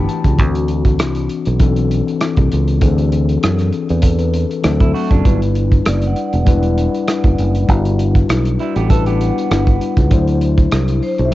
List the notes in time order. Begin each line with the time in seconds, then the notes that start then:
Already playing: E3 A3 B3 D4 G4 G5 A5 B5
0.08 A5, closed hi-hat
0.25 C#2, kick, closed hi-hat
0.37 D2 E3 C4 D4 F#4, kick, closed hi-hat
0.55 closed hi-hat
0.68 closed hi-hat
0.85 kick, closed hi-hat
0.99 C2, cross-stick, closed hi-hat
1.15 closed hi-hat
1.29 closed hi-hat
1.45 B1, closed hi-hat
1.59 E3 C4 D4 A4, kick, closed hi-hat
1.76 closed hi-hat
1.91 closed hi-hat
2.08 closed hi-hat
2.21 cross-stick, closed hi-hat
2.37 C2, kick, closed hi-hat
2.52 C#2, closed hi-hat
2.68 closed hi-hat
2.79 D2 E3 C4 D4 G#4, kick, closed hi-hat
2.89 A4
2.98 closed hi-hat
3.12 closed hi-hat
3.29 closed hi-hat
3.43 F#2, cross-stick, closed hi-hat
3.58 cross-stick, closed hi-hat
3.72 closed hi-hat
3.89 E2, closed hi-hat
4.02 A4, kick, closed hi-hat
4.19 B4, closed hi-hat
4.34 closed hi-hat
4.50 A4, closed hi-hat
4.62 D2 E3 C4 D4 A4, cross-stick, closed hi-hat
4.69 F#3
4.80 E4, kick, closed hi-hat
4.94 A3 F#4, open hi-hat
5.11 F#1 F#3 D4, kick, closed hi-hat
5.23 G1 G3 D4 E4 B4, kick, closed hi-hat
5.42 closed hi-hat
5.55 closed hi-hat
5.72 kick, closed hi-hat
5.85 F#1 D5, cross-stick, closed hi-hat
6.02 closed hi-hat
6.07 F#5
6.16 closed hi-hat
6.33 E1, closed hi-hat
6.45 G3 D4 E4 B4, kick, closed hi-hat
6.63 closed hi-hat
6.78 closed hi-hat
6.95 closed hi-hat
7.08 cross-stick, closed hi-hat
7.24 F#1, kick, closed hi-hat
7.38 F#1, closed hi-hat
7.55 closed hi-hat
7.67 G1 G3 D4 E4 F#4, kick, closed hi-hat
7.85 closed hi-hat
7.99 closed hi-hat
8.15 kick, closed hi-hat
8.29 B1, cross-stick, closed hi-hat
8.45 closed hi-hat
8.59 G3 E4, closed hi-hat
8.76 A1 B3 G4, closed hi-hat
8.89 G3 D4 E4 A4 B4, kick, closed hi-hat
9.06 B3 G4, closed hi-hat
9.21 F#5, closed hi-hat
9.38 closed hi-hat
9.51 G1, cross-stick, closed hi-hat
9.67 kick, closed hi-hat
9.81 closed hi-hat
9.97 C#2, kick, closed hi-hat
10.11 D2 F#3 D4 E4 C5, kick, closed hi-hat
10.28 closed hi-hat
10.41 closed hi-hat
10.58 kick, closed hi-hat
10.71 C2, cross-stick, closed hi-hat
10.88 closed hi-hat
11.02 C5, open hi-hat
11.18 B1, closed hi-hat
11.25 E5